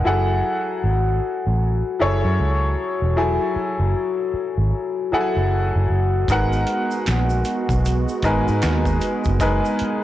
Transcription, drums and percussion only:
6.28 kick, closed hi-hat, shaker
6.53 shaker
6.67 closed hi-hat
6.91 shaker
7.06 finger snap, snare, closed hi-hat, shaker
7.30 shaker
7.45 closed hi-hat, shaker
7.69 kick, closed hi-hat, shaker
7.85 closed hi-hat, shaker
8.08 shaker
8.22 kick, closed hi-hat, shaker
8.48 shaker
8.62 finger snap, snare, closed hi-hat, shaker
8.85 kick, shaker
9.01 closed hi-hat, shaker
9.24 kick, shaker
9.40 kick, closed hi-hat, shaker
9.65 shaker
9.79 closed hi-hat

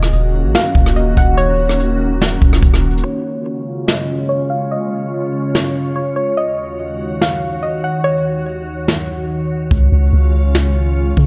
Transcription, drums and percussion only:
0.03 cross-stick
0.13 closed hi-hat
0.54 snare, closed hi-hat
0.75 kick
0.86 cross-stick
0.96 closed hi-hat
1.17 kick, closed hi-hat
1.38 closed hi-hat
1.69 cross-stick
1.80 closed hi-hat
2.21 snare, closed hi-hat
2.42 kick
2.53 cross-stick
2.63 kick, closed hi-hat
2.74 cross-stick
2.84 closed hi-hat
2.91 closed hi-hat
2.98 closed hi-hat
3.88 snare
5.55 snare
7.21 snare
8.88 snare
9.71 kick
10.55 snare
11.17 kick

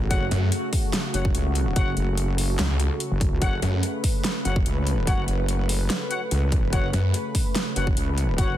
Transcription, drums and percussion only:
0.11 kick, closed hi-hat
0.31 closed hi-hat
0.52 closed hi-hat
0.73 kick, open hi-hat
0.93 snare, closed hi-hat
1.14 closed hi-hat
1.25 kick
1.35 closed hi-hat
1.55 closed hi-hat
1.76 kick, closed hi-hat
1.97 closed hi-hat
2.17 closed hi-hat
2.38 open hi-hat
2.59 snare, closed hi-hat
2.80 closed hi-hat
3.00 closed hi-hat
3.21 kick, closed hi-hat
3.42 kick, closed hi-hat
3.62 closed hi-hat
3.83 closed hi-hat
4.04 kick, open hi-hat
4.24 snare, closed hi-hat
4.45 closed hi-hat
4.56 kick
4.66 closed hi-hat
4.87 closed hi-hat
5.07 kick, closed hi-hat
5.28 closed hi-hat
5.49 closed hi-hat
5.69 open hi-hat
5.90 snare, closed hi-hat
6.11 closed hi-hat
6.31 closed hi-hat
6.52 kick, closed hi-hat
6.73 kick, closed hi-hat
6.93 closed hi-hat
7.14 closed hi-hat
7.35 kick, open hi-hat
7.55 snare, closed hi-hat
7.76 closed hi-hat
7.87 kick
7.97 closed hi-hat
8.18 closed hi-hat
8.38 kick, closed hi-hat

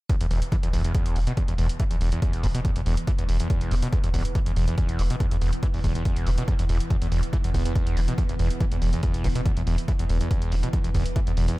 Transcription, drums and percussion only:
0.10 kick, closed hi-hat
0.21 closed hi-hat
0.31 open hi-hat
0.42 closed hi-hat
0.52 kick, closed hi-hat
0.63 closed hi-hat
0.73 kick, open hi-hat
0.84 closed hi-hat
0.95 kick, closed hi-hat
1.06 closed hi-hat
1.16 open hi-hat
1.27 closed hi-hat
1.37 kick, closed hi-hat
1.48 closed hi-hat
1.58 open hi-hat
1.69 closed hi-hat
1.80 kick, closed hi-hat
1.91 closed hi-hat
2.01 open hi-hat
2.12 closed hi-hat
2.22 kick, closed hi-hat
2.33 closed hi-hat
2.43 kick, open hi-hat
2.55 closed hi-hat
2.65 kick, closed hi-hat
2.76 closed hi-hat
2.86 open hi-hat
2.97 closed hi-hat
3.07 kick, closed hi-hat
3.19 closed hi-hat
3.29 open hi-hat
3.40 closed hi-hat
3.50 kick, closed hi-hat
3.61 closed hi-hat
3.71 open hi-hat
3.82 closed hi-hat
3.93 kick, closed hi-hat
4.04 closed hi-hat
4.14 kick, open hi-hat
4.25 closed hi-hat
4.35 kick, closed hi-hat
4.46 closed hi-hat
4.56 open hi-hat
4.68 closed hi-hat
4.78 kick, closed hi-hat
4.89 closed hi-hat
4.99 open hi-hat
5.10 closed hi-hat
5.20 kick, closed hi-hat
5.31 closed hi-hat
5.41 open hi-hat
5.53 closed hi-hat
5.63 kick, closed hi-hat
5.74 open hi-hat
5.84 kick, open hi-hat
5.95 closed hi-hat
6.05 kick, closed hi-hat
6.16 closed hi-hat
6.27 open hi-hat
6.38 closed hi-hat
6.48 kick, closed hi-hat
6.59 closed hi-hat
6.69 open hi-hat
6.80 closed hi-hat
6.90 kick, closed hi-hat
7.02 closed hi-hat
7.12 open hi-hat
7.23 closed hi-hat
7.33 kick, closed hi-hat
7.44 closed hi-hat
7.54 kick, open hi-hat
7.65 closed hi-hat
7.75 kick, closed hi-hat
7.87 closed hi-hat
7.97 open hi-hat
8.08 closed hi-hat
8.18 kick, closed hi-hat
8.29 closed hi-hat
8.39 open hi-hat
8.50 closed hi-hat
8.61 kick, closed hi-hat
8.72 closed hi-hat
8.82 open hi-hat
8.93 closed hi-hat
9.03 kick, closed hi-hat
9.14 closed hi-hat
9.24 kick, open hi-hat
9.35 closed hi-hat
9.46 kick, closed hi-hat
9.57 closed hi-hat
9.67 open hi-hat
9.78 closed hi-hat
9.88 kick, closed hi-hat
9.99 closed hi-hat
10.09 open hi-hat
10.21 closed hi-hat
10.31 kick, closed hi-hat
10.42 closed hi-hat
10.52 open hi-hat
10.63 closed hi-hat
10.73 kick, closed hi-hat
10.84 closed hi-hat
10.94 kick, open hi-hat
11.06 closed hi-hat
11.16 kick, closed hi-hat
11.27 closed hi-hat
11.37 open hi-hat
11.48 closed hi-hat

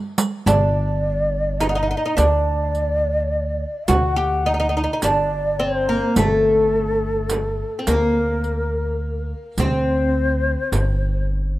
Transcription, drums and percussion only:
0.18 riq
0.47 riq, frame drum
1.60 riq, frame drum
2.18 riq, frame drum
2.75 riq
3.88 riq, frame drum
5.02 riq, frame drum
6.16 riq, frame drum
7.30 riq, frame drum
7.87 riq, frame drum
8.44 riq
9.58 riq, frame drum
10.73 riq, frame drum

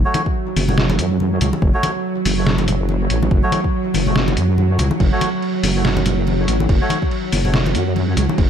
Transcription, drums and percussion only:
0.14 closed hi-hat, high conga
0.26 kick
0.56 open hi-hat, high conga, shaker
0.69 low conga
0.78 snare
0.90 closed hi-hat, high conga
0.99 closed hi-hat, shaker
1.20 high conga
1.41 closed hi-hat, low conga, shaker
1.53 high conga
1.62 kick
1.83 closed hi-hat, high conga
2.25 open hi-hat, high conga, shaker
2.47 snare
2.58 closed hi-hat, high conga
2.68 closed hi-hat, low conga, shaker
2.89 high conga
3.10 closed hi-hat
3.23 high conga
3.31 kick
3.52 closed hi-hat, high conga
3.64 kick
3.94 open hi-hat, high conga, shaker
4.07 low conga
4.16 snare
4.28 closed hi-hat, high conga
4.37 closed hi-hat, shaker
4.58 high conga
4.79 closed hi-hat, low conga, shaker
4.91 high conga
5.00 kick, crash
5.21 closed hi-hat, high conga
5.42 crash
5.64 open hi-hat, high conga, shaker
5.85 snare, crash
5.97 closed hi-hat, high conga
6.06 closed hi-hat, low conga, shaker
6.27 crash, high conga
6.48 closed hi-hat
6.60 high conga
6.69 kick, crash
6.90 closed hi-hat, high conga
7.02 kick
7.11 crash
7.32 open hi-hat, high conga, shaker
7.45 low conga
7.54 snare, crash
7.66 closed hi-hat, high conga
7.75 closed hi-hat, shaker
7.96 crash, high conga
8.17 closed hi-hat, low conga, shaker
8.29 high conga
8.38 kick, crash

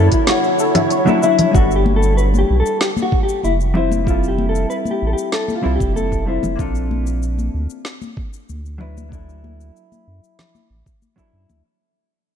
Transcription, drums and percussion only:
0.12 kick, closed hi-hat, cabasa
0.27 snare, closed hi-hat, cabasa
0.44 cabasa
0.59 cabasa
0.75 closed hi-hat, low conga, cabasa
0.90 closed hi-hat, cabasa
1.07 high conga, cabasa
1.23 cabasa
1.39 closed hi-hat, low conga, cabasa
1.55 kick, cabasa
1.71 cabasa
1.86 high conga
2.03 cabasa
2.18 cabasa
2.34 high conga, cabasa
2.66 cabasa
2.81 snare, cabasa
2.97 high conga, cabasa
3.12 kick
3.29 cabasa
3.43 high conga, cabasa
3.61 cabasa
3.75 low conga
3.92 high conga, cabasa
4.07 kick, cabasa
4.24 cabasa
4.38 high conga
4.55 cabasa
4.71 cabasa
4.85 high conga, cabasa
5.18 cabasa
5.32 snare, cabasa
5.48 high conga, cabasa
5.80 kick, cabasa
5.96 high conga, cabasa
6.12 kick, cabasa
6.43 high conga, low conga, cabasa
6.59 kick, cabasa
6.75 cabasa
6.91 high conga
7.07 cabasa
7.23 cabasa
7.38 high conga, cabasa
7.70 cabasa
7.85 snare, cabasa
8.02 high conga, cabasa
8.17 kick
8.33 cabasa
8.49 high conga, cabasa
8.65 cabasa
8.80 low conga
8.97 high conga, cabasa
9.12 kick, cabasa
9.29 cabasa
9.44 high conga
9.61 cabasa
9.76 cabasa
9.92 high conga, cabasa
10.24 cabasa
10.39 snare, low conga, cabasa
10.55 high conga, cabasa
10.86 kick, cabasa
11.02 high conga, cabasa
11.18 kick, cabasa
11.50 high conga, low conga, cabasa

